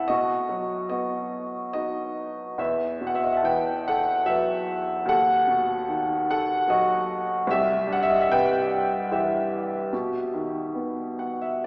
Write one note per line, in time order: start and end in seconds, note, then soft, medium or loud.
0.00 0.12 E3 soft
0.00 0.12 C4 soft
0.00 0.12 E4 medium
0.00 0.12 A4 medium
0.00 0.12 E5 medium
0.00 0.12 F#5 medium
0.08 2.55 B2 medium
0.08 0.87 F#4 medium
0.08 0.86 D#5 medium
0.49 2.12 F#3 medium
0.89 2.55 B3 soft
0.89 1.71 F#4 medium
0.89 1.70 D#5 medium
1.73 2.56 D#4 soft
1.73 2.56 F#4 medium
1.73 2.61 D#5 medium
2.58 5.02 E2 medium
2.58 3.04 B4 medium
2.58 3.08 E5 medium
3.01 4.62 B2 soft
3.07 3.16 F#5 medium
3.15 3.25 E5 medium
3.24 3.34 D#5 medium
3.32 3.43 E5 medium
3.37 3.44 A5 medium
3.43 5.02 E3 soft
3.43 3.84 B4 medium
3.43 3.87 G5 medium
3.88 4.25 A4 medium
3.88 4.25 F#5 medium
4.26 5.04 F#3 medium
4.26 5.04 B4 medium
4.26 5.09 E5 medium
5.05 7.43 D#2 medium
5.05 6.27 A4 medium
5.05 6.29 F#5 medium
5.48 7.04 B2 medium
5.88 7.43 D#3 medium
6.31 6.67 A4 medium
6.31 6.71 F#5 medium
6.68 7.44 F#3 medium
6.68 7.44 F#4 medium
6.68 7.50 D#5 medium
7.47 9.87 C2 medium
7.47 7.91 G4 medium
7.47 7.95 E5 medium
7.87 9.46 G2 medium
7.93 8.01 F#5 medium
8.03 8.11 E5 medium
8.10 8.19 D#5 medium
8.21 8.29 E5 medium
8.29 9.88 C3 medium
8.29 9.08 B4 medium
8.29 9.14 G5 medium
9.12 9.90 E3 medium
9.12 11.66 G4 medium
9.12 11.40 E5 medium
9.93 11.62 B2 medium
10.34 11.61 D#3 soft
10.75 11.62 B3 soft
11.19 11.40 F#5 medium
11.42 11.63 E5 medium